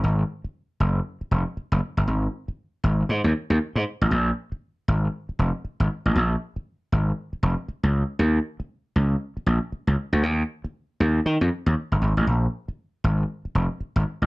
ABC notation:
X:1
M:4/4
L:1/16
Q:"Swing 16ths" 1/4=118
K:Ebmix
V:1 name="Slap bass" clef=bass
A,,,2 z4 _G,,,2 z2 F,,, z2 G,,, z =G,,, | A,,,2 z4 A,,,2 A,, E,, z E,, z A,, z =A,,, | B,,,2 z4 A,,,2 z2 F,,, z2 A,,, z =A,,, | B,,,2 z4 A,,,2 z2 F,,, z2 D,,2 z |
E,,2 z4 D,,2 z2 B,,, z2 D,, z =D,, | E,,2 z4 E,,2 E, F,, z E,, z G,,, A,,, =A,,, | B,,,2 z4 A,,,2 z2 F,,, z2 A,,, z =A,,, |]